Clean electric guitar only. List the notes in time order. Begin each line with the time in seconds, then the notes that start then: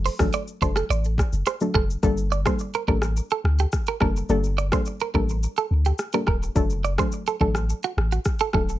0.06 C5
0.34 D5
0.62 C5
0.77 A4
0.90 D5
1.47 C5
1.75 A4
2.32 D5
2.47 C5
2.75 A#4
2.88 A#4
3.32 A4
3.60 G4
3.88 A#4
4.02 A#4
4.58 D5
4.73 C5
5.01 A#4
5.15 A#4
5.58 A4
5.86 G4
6.14 A#4
6.28 A#4
6.84 D5
6.99 C5
7.28 A4
7.41 A4
7.84 F#4
8.12 F#4
8.41 A4
8.54 A4